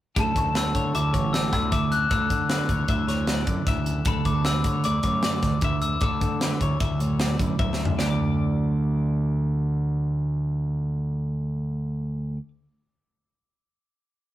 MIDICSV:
0, 0, Header, 1, 6, 480
1, 0, Start_track
1, 0, Key_signature, 2, "major"
1, 0, Tempo, 389864
1, 202, Time_signature, 5, 2, 24, 8
1, 17657, End_track
2, 0, Start_track
2, 0, Title_t, "Glockenspiel"
2, 0, Program_c, 0, 9
2, 238, Note_on_c, 0, 81, 73
2, 444, Note_off_c, 0, 81, 0
2, 462, Note_on_c, 0, 85, 76
2, 698, Note_off_c, 0, 85, 0
2, 702, Note_on_c, 0, 88, 87
2, 1138, Note_off_c, 0, 88, 0
2, 1171, Note_on_c, 0, 86, 87
2, 1636, Note_on_c, 0, 88, 90
2, 1659, Note_off_c, 0, 86, 0
2, 1863, Note_off_c, 0, 88, 0
2, 1878, Note_on_c, 0, 88, 93
2, 2122, Note_on_c, 0, 86, 98
2, 2125, Note_off_c, 0, 88, 0
2, 2361, Note_on_c, 0, 90, 96
2, 2367, Note_off_c, 0, 86, 0
2, 2594, Note_on_c, 0, 88, 94
2, 2607, Note_off_c, 0, 90, 0
2, 3990, Note_off_c, 0, 88, 0
2, 5022, Note_on_c, 0, 83, 90
2, 5238, Note_off_c, 0, 83, 0
2, 5241, Note_on_c, 0, 86, 88
2, 5484, Note_on_c, 0, 88, 101
2, 5492, Note_off_c, 0, 86, 0
2, 5970, Note_on_c, 0, 86, 91
2, 5983, Note_off_c, 0, 88, 0
2, 6184, Note_off_c, 0, 86, 0
2, 6199, Note_on_c, 0, 86, 93
2, 7120, Note_off_c, 0, 86, 0
2, 7161, Note_on_c, 0, 88, 92
2, 7293, Note_off_c, 0, 88, 0
2, 7308, Note_on_c, 0, 88, 59
2, 7399, Note_on_c, 0, 86, 81
2, 7406, Note_off_c, 0, 88, 0
2, 9286, Note_off_c, 0, 86, 0
2, 17657, End_track
3, 0, Start_track
3, 0, Title_t, "Clean electric guitar"
3, 0, Program_c, 1, 27
3, 201, Note_on_c, 1, 69, 89
3, 680, Note_off_c, 1, 69, 0
3, 688, Note_on_c, 1, 71, 70
3, 924, Note_off_c, 1, 71, 0
3, 930, Note_on_c, 1, 73, 65
3, 1164, Note_off_c, 1, 73, 0
3, 1169, Note_on_c, 1, 76, 74
3, 1391, Note_off_c, 1, 76, 0
3, 1396, Note_on_c, 1, 73, 76
3, 1637, Note_off_c, 1, 73, 0
3, 1637, Note_on_c, 1, 74, 80
3, 2114, Note_off_c, 1, 74, 0
3, 2119, Note_on_c, 1, 76, 76
3, 2599, Note_off_c, 1, 76, 0
3, 2604, Note_on_c, 1, 69, 83
3, 3082, Note_off_c, 1, 69, 0
3, 3085, Note_on_c, 1, 71, 76
3, 3313, Note_off_c, 1, 71, 0
3, 3313, Note_on_c, 1, 73, 70
3, 3557, Note_off_c, 1, 73, 0
3, 3566, Note_on_c, 1, 76, 76
3, 3791, Note_off_c, 1, 76, 0
3, 3796, Note_on_c, 1, 73, 74
3, 4042, Note_off_c, 1, 73, 0
3, 4042, Note_on_c, 1, 74, 83
3, 4523, Note_off_c, 1, 74, 0
3, 4531, Note_on_c, 1, 76, 73
3, 5005, Note_on_c, 1, 69, 86
3, 5009, Note_off_c, 1, 76, 0
3, 5487, Note_off_c, 1, 69, 0
3, 5487, Note_on_c, 1, 71, 67
3, 5738, Note_off_c, 1, 71, 0
3, 5738, Note_on_c, 1, 73, 65
3, 5969, Note_off_c, 1, 73, 0
3, 5974, Note_on_c, 1, 74, 80
3, 6215, Note_off_c, 1, 74, 0
3, 6215, Note_on_c, 1, 73, 80
3, 6454, Note_off_c, 1, 73, 0
3, 6463, Note_on_c, 1, 74, 75
3, 6940, Note_off_c, 1, 74, 0
3, 6950, Note_on_c, 1, 76, 84
3, 7420, Note_on_c, 1, 69, 90
3, 7424, Note_off_c, 1, 76, 0
3, 7901, Note_off_c, 1, 69, 0
3, 7908, Note_on_c, 1, 71, 64
3, 8145, Note_off_c, 1, 71, 0
3, 8150, Note_on_c, 1, 73, 68
3, 8378, Note_off_c, 1, 73, 0
3, 8382, Note_on_c, 1, 76, 75
3, 8621, Note_off_c, 1, 76, 0
3, 8621, Note_on_c, 1, 73, 74
3, 8858, Note_off_c, 1, 73, 0
3, 8858, Note_on_c, 1, 74, 86
3, 9342, Note_off_c, 1, 74, 0
3, 9350, Note_on_c, 1, 76, 77
3, 9829, Note_off_c, 1, 76, 0
3, 9830, Note_on_c, 1, 74, 69
3, 9876, Note_on_c, 1, 78, 64
3, 9930, Note_off_c, 1, 78, 0
3, 9930, Note_on_c, 1, 81, 64
3, 9972, Note_off_c, 1, 81, 0
3, 9977, Note_on_c, 1, 86, 59
3, 15222, Note_off_c, 1, 74, 0
3, 15368, Note_off_c, 1, 86, 0
3, 17657, End_track
4, 0, Start_track
4, 0, Title_t, "Clean electric guitar"
4, 0, Program_c, 2, 27
4, 205, Note_on_c, 2, 38, 74
4, 211, Note_on_c, 2, 50, 62
4, 216, Note_on_c, 2, 54, 66
4, 227, Note_on_c, 2, 61, 62
4, 235, Note_on_c, 2, 64, 65
4, 679, Note_off_c, 2, 50, 0
4, 684, Note_on_c, 2, 50, 64
4, 721, Note_off_c, 2, 61, 0
4, 924, Note_off_c, 2, 64, 0
4, 929, Note_on_c, 2, 64, 61
4, 1159, Note_off_c, 2, 54, 0
4, 1164, Note_on_c, 2, 54, 59
4, 1405, Note_on_c, 2, 45, 60
4, 1868, Note_off_c, 2, 64, 0
4, 1873, Note_on_c, 2, 62, 63
4, 1994, Note_off_c, 2, 62, 0
4, 1994, Note_on_c, 2, 64, 54
4, 2110, Note_off_c, 2, 38, 0
4, 2115, Note_on_c, 2, 38, 69
4, 2357, Note_on_c, 2, 61, 59
4, 2569, Note_off_c, 2, 61, 0
4, 2584, Note_off_c, 2, 38, 0
4, 2589, Note_on_c, 2, 38, 77
4, 2597, Note_off_c, 2, 64, 0
4, 2602, Note_off_c, 2, 45, 0
4, 3060, Note_off_c, 2, 50, 0
4, 3065, Note_on_c, 2, 50, 61
4, 3311, Note_on_c, 2, 62, 57
4, 3423, Note_off_c, 2, 62, 0
4, 3423, Note_on_c, 2, 64, 53
4, 3550, Note_off_c, 2, 54, 0
4, 3555, Note_on_c, 2, 54, 53
4, 3786, Note_on_c, 2, 45, 65
4, 4255, Note_off_c, 2, 64, 0
4, 4260, Note_on_c, 2, 62, 64
4, 4400, Note_off_c, 2, 62, 0
4, 4400, Note_on_c, 2, 64, 53
4, 4508, Note_off_c, 2, 38, 0
4, 4513, Note_on_c, 2, 38, 72
4, 4759, Note_on_c, 2, 61, 60
4, 4974, Note_off_c, 2, 61, 0
4, 4989, Note_off_c, 2, 38, 0
4, 4994, Note_on_c, 2, 38, 74
4, 4998, Note_off_c, 2, 45, 0
4, 5004, Note_off_c, 2, 64, 0
4, 5230, Note_on_c, 2, 57, 59
4, 5348, Note_off_c, 2, 57, 0
4, 5348, Note_on_c, 2, 59, 45
4, 5470, Note_off_c, 2, 50, 0
4, 5475, Note_on_c, 2, 50, 61
4, 5711, Note_on_c, 2, 62, 62
4, 5951, Note_off_c, 2, 54, 0
4, 5956, Note_on_c, 2, 57, 55
4, 6193, Note_off_c, 2, 38, 0
4, 6198, Note_on_c, 2, 38, 63
4, 6690, Note_off_c, 2, 62, 0
4, 6695, Note_on_c, 2, 62, 65
4, 6926, Note_off_c, 2, 38, 0
4, 6931, Note_on_c, 2, 38, 69
4, 7166, Note_off_c, 2, 59, 0
4, 7174, Note_off_c, 2, 57, 0
4, 7174, Note_on_c, 2, 57, 58
4, 7297, Note_off_c, 2, 57, 0
4, 7297, Note_on_c, 2, 59, 49
4, 7414, Note_off_c, 2, 38, 0
4, 7417, Note_off_c, 2, 59, 0
4, 7419, Note_on_c, 2, 38, 68
4, 7883, Note_off_c, 2, 50, 0
4, 7898, Note_on_c, 2, 50, 65
4, 8141, Note_off_c, 2, 62, 0
4, 8149, Note_on_c, 2, 64, 65
4, 8402, Note_on_c, 2, 54, 58
4, 8618, Note_on_c, 2, 45, 63
4, 9095, Note_off_c, 2, 64, 0
4, 9110, Note_on_c, 2, 64, 61
4, 9334, Note_off_c, 2, 38, 0
4, 9349, Note_on_c, 2, 38, 71
4, 9594, Note_on_c, 2, 61, 55
4, 9797, Note_off_c, 2, 38, 0
4, 9800, Note_off_c, 2, 64, 0
4, 9801, Note_off_c, 2, 61, 0
4, 9812, Note_on_c, 2, 38, 65
4, 9821, Note_off_c, 2, 50, 0
4, 9824, Note_off_c, 2, 45, 0
4, 9836, Note_on_c, 2, 50, 62
4, 9847, Note_off_c, 2, 54, 0
4, 9862, Note_on_c, 2, 54, 63
4, 9918, Note_on_c, 2, 64, 57
4, 15252, Note_off_c, 2, 38, 0
4, 15276, Note_off_c, 2, 50, 0
4, 15303, Note_off_c, 2, 54, 0
4, 15359, Note_off_c, 2, 64, 0
4, 17657, End_track
5, 0, Start_track
5, 0, Title_t, "Fingered electric bass"
5, 0, Program_c, 3, 33
5, 203, Note_on_c, 3, 38, 88
5, 422, Note_off_c, 3, 38, 0
5, 446, Note_on_c, 3, 38, 77
5, 884, Note_off_c, 3, 38, 0
5, 925, Note_on_c, 3, 50, 78
5, 1143, Note_off_c, 3, 50, 0
5, 1156, Note_on_c, 3, 38, 90
5, 1377, Note_off_c, 3, 38, 0
5, 1404, Note_on_c, 3, 33, 92
5, 1878, Note_off_c, 3, 33, 0
5, 1878, Note_on_c, 3, 38, 78
5, 2099, Note_off_c, 3, 38, 0
5, 2123, Note_on_c, 3, 38, 93
5, 2562, Note_off_c, 3, 38, 0
5, 2597, Note_on_c, 3, 38, 98
5, 2818, Note_off_c, 3, 38, 0
5, 2840, Note_on_c, 3, 50, 78
5, 3281, Note_off_c, 3, 50, 0
5, 3314, Note_on_c, 3, 38, 78
5, 3538, Note_off_c, 3, 38, 0
5, 3553, Note_on_c, 3, 38, 83
5, 4229, Note_off_c, 3, 38, 0
5, 4278, Note_on_c, 3, 42, 89
5, 4501, Note_off_c, 3, 42, 0
5, 4518, Note_on_c, 3, 38, 87
5, 4963, Note_off_c, 3, 38, 0
5, 4995, Note_on_c, 3, 38, 97
5, 5221, Note_off_c, 3, 38, 0
5, 5233, Note_on_c, 3, 38, 74
5, 5682, Note_off_c, 3, 38, 0
5, 5722, Note_on_c, 3, 50, 78
5, 5946, Note_off_c, 3, 50, 0
5, 5986, Note_on_c, 3, 38, 96
5, 6196, Note_off_c, 3, 38, 0
5, 6203, Note_on_c, 3, 42, 96
5, 6686, Note_off_c, 3, 42, 0
5, 6686, Note_on_c, 3, 38, 84
5, 6910, Note_off_c, 3, 38, 0
5, 6919, Note_on_c, 3, 38, 89
5, 7369, Note_off_c, 3, 38, 0
5, 7409, Note_on_c, 3, 38, 99
5, 7634, Note_off_c, 3, 38, 0
5, 7652, Note_on_c, 3, 50, 81
5, 8098, Note_off_c, 3, 50, 0
5, 8135, Note_on_c, 3, 38, 84
5, 8358, Note_off_c, 3, 38, 0
5, 8381, Note_on_c, 3, 38, 82
5, 9054, Note_off_c, 3, 38, 0
5, 9111, Note_on_c, 3, 42, 81
5, 9329, Note_off_c, 3, 42, 0
5, 9348, Note_on_c, 3, 38, 88
5, 9789, Note_off_c, 3, 38, 0
5, 9842, Note_on_c, 3, 38, 90
5, 15233, Note_off_c, 3, 38, 0
5, 17657, End_track
6, 0, Start_track
6, 0, Title_t, "Drums"
6, 202, Note_on_c, 9, 36, 104
6, 203, Note_on_c, 9, 42, 79
6, 325, Note_off_c, 9, 36, 0
6, 326, Note_off_c, 9, 42, 0
6, 441, Note_on_c, 9, 36, 77
6, 442, Note_on_c, 9, 42, 57
6, 564, Note_off_c, 9, 36, 0
6, 566, Note_off_c, 9, 42, 0
6, 680, Note_on_c, 9, 42, 80
6, 681, Note_on_c, 9, 38, 97
6, 803, Note_off_c, 9, 42, 0
6, 804, Note_off_c, 9, 38, 0
6, 921, Note_on_c, 9, 36, 64
6, 923, Note_on_c, 9, 42, 57
6, 1044, Note_off_c, 9, 36, 0
6, 1046, Note_off_c, 9, 42, 0
6, 1166, Note_on_c, 9, 42, 82
6, 1289, Note_off_c, 9, 42, 0
6, 1403, Note_on_c, 9, 36, 73
6, 1403, Note_on_c, 9, 42, 60
6, 1526, Note_off_c, 9, 36, 0
6, 1526, Note_off_c, 9, 42, 0
6, 1650, Note_on_c, 9, 42, 81
6, 1651, Note_on_c, 9, 38, 97
6, 1773, Note_off_c, 9, 42, 0
6, 1774, Note_off_c, 9, 38, 0
6, 1880, Note_on_c, 9, 42, 61
6, 1881, Note_on_c, 9, 36, 74
6, 1882, Note_on_c, 9, 38, 30
6, 2004, Note_off_c, 9, 36, 0
6, 2004, Note_off_c, 9, 42, 0
6, 2005, Note_off_c, 9, 38, 0
6, 2117, Note_on_c, 9, 42, 82
6, 2120, Note_on_c, 9, 36, 95
6, 2240, Note_off_c, 9, 42, 0
6, 2243, Note_off_c, 9, 36, 0
6, 2361, Note_on_c, 9, 42, 56
6, 2484, Note_off_c, 9, 42, 0
6, 2595, Note_on_c, 9, 42, 80
6, 2597, Note_on_c, 9, 36, 113
6, 2718, Note_off_c, 9, 42, 0
6, 2720, Note_off_c, 9, 36, 0
6, 2835, Note_on_c, 9, 42, 61
6, 2836, Note_on_c, 9, 36, 74
6, 2958, Note_off_c, 9, 42, 0
6, 2959, Note_off_c, 9, 36, 0
6, 3072, Note_on_c, 9, 42, 76
6, 3073, Note_on_c, 9, 38, 105
6, 3195, Note_off_c, 9, 42, 0
6, 3196, Note_off_c, 9, 38, 0
6, 3311, Note_on_c, 9, 42, 53
6, 3312, Note_on_c, 9, 36, 68
6, 3434, Note_off_c, 9, 42, 0
6, 3435, Note_off_c, 9, 36, 0
6, 3548, Note_on_c, 9, 42, 71
6, 3553, Note_on_c, 9, 36, 98
6, 3672, Note_off_c, 9, 42, 0
6, 3676, Note_off_c, 9, 36, 0
6, 3799, Note_on_c, 9, 42, 53
6, 3800, Note_on_c, 9, 38, 32
6, 3922, Note_off_c, 9, 42, 0
6, 3924, Note_off_c, 9, 38, 0
6, 4031, Note_on_c, 9, 42, 73
6, 4032, Note_on_c, 9, 38, 97
6, 4154, Note_off_c, 9, 42, 0
6, 4155, Note_off_c, 9, 38, 0
6, 4271, Note_on_c, 9, 42, 54
6, 4274, Note_on_c, 9, 36, 70
6, 4394, Note_off_c, 9, 42, 0
6, 4398, Note_off_c, 9, 36, 0
6, 4514, Note_on_c, 9, 42, 78
6, 4515, Note_on_c, 9, 36, 97
6, 4516, Note_on_c, 9, 38, 30
6, 4637, Note_off_c, 9, 42, 0
6, 4638, Note_off_c, 9, 36, 0
6, 4639, Note_off_c, 9, 38, 0
6, 4754, Note_on_c, 9, 42, 58
6, 4877, Note_off_c, 9, 42, 0
6, 4986, Note_on_c, 9, 42, 90
6, 4994, Note_on_c, 9, 36, 113
6, 5110, Note_off_c, 9, 42, 0
6, 5117, Note_off_c, 9, 36, 0
6, 5236, Note_on_c, 9, 36, 72
6, 5236, Note_on_c, 9, 42, 61
6, 5359, Note_off_c, 9, 36, 0
6, 5359, Note_off_c, 9, 42, 0
6, 5474, Note_on_c, 9, 42, 77
6, 5475, Note_on_c, 9, 38, 93
6, 5597, Note_off_c, 9, 42, 0
6, 5599, Note_off_c, 9, 38, 0
6, 5714, Note_on_c, 9, 42, 60
6, 5718, Note_on_c, 9, 36, 69
6, 5837, Note_off_c, 9, 42, 0
6, 5842, Note_off_c, 9, 36, 0
6, 5956, Note_on_c, 9, 42, 80
6, 6080, Note_off_c, 9, 42, 0
6, 6193, Note_on_c, 9, 42, 60
6, 6200, Note_on_c, 9, 36, 68
6, 6316, Note_off_c, 9, 42, 0
6, 6323, Note_off_c, 9, 36, 0
6, 6435, Note_on_c, 9, 42, 78
6, 6436, Note_on_c, 9, 38, 93
6, 6558, Note_off_c, 9, 42, 0
6, 6559, Note_off_c, 9, 38, 0
6, 6679, Note_on_c, 9, 42, 56
6, 6680, Note_on_c, 9, 38, 34
6, 6683, Note_on_c, 9, 36, 73
6, 6802, Note_off_c, 9, 42, 0
6, 6803, Note_off_c, 9, 38, 0
6, 6806, Note_off_c, 9, 36, 0
6, 6911, Note_on_c, 9, 42, 78
6, 6922, Note_on_c, 9, 36, 96
6, 7034, Note_off_c, 9, 42, 0
6, 7045, Note_off_c, 9, 36, 0
6, 7160, Note_on_c, 9, 42, 55
6, 7284, Note_off_c, 9, 42, 0
6, 7395, Note_on_c, 9, 42, 74
6, 7406, Note_on_c, 9, 36, 104
6, 7518, Note_off_c, 9, 42, 0
6, 7529, Note_off_c, 9, 36, 0
6, 7651, Note_on_c, 9, 36, 77
6, 7651, Note_on_c, 9, 42, 53
6, 7774, Note_off_c, 9, 36, 0
6, 7774, Note_off_c, 9, 42, 0
6, 7892, Note_on_c, 9, 42, 77
6, 7893, Note_on_c, 9, 38, 104
6, 8015, Note_off_c, 9, 42, 0
6, 8017, Note_off_c, 9, 38, 0
6, 8135, Note_on_c, 9, 36, 66
6, 8135, Note_on_c, 9, 42, 55
6, 8258, Note_off_c, 9, 36, 0
6, 8259, Note_off_c, 9, 42, 0
6, 8376, Note_on_c, 9, 42, 72
6, 8378, Note_on_c, 9, 36, 94
6, 8499, Note_off_c, 9, 42, 0
6, 8501, Note_off_c, 9, 36, 0
6, 8623, Note_on_c, 9, 42, 50
6, 8746, Note_off_c, 9, 42, 0
6, 8859, Note_on_c, 9, 42, 80
6, 8860, Note_on_c, 9, 38, 103
6, 8982, Note_off_c, 9, 42, 0
6, 8983, Note_off_c, 9, 38, 0
6, 9105, Note_on_c, 9, 36, 75
6, 9111, Note_on_c, 9, 42, 56
6, 9228, Note_off_c, 9, 36, 0
6, 9234, Note_off_c, 9, 42, 0
6, 9345, Note_on_c, 9, 48, 49
6, 9347, Note_on_c, 9, 36, 101
6, 9468, Note_off_c, 9, 48, 0
6, 9470, Note_off_c, 9, 36, 0
6, 9518, Note_on_c, 9, 38, 58
6, 9641, Note_off_c, 9, 38, 0
6, 9670, Note_on_c, 9, 43, 86
6, 9793, Note_off_c, 9, 43, 0
6, 9834, Note_on_c, 9, 38, 92
6, 9957, Note_off_c, 9, 38, 0
6, 17657, End_track
0, 0, End_of_file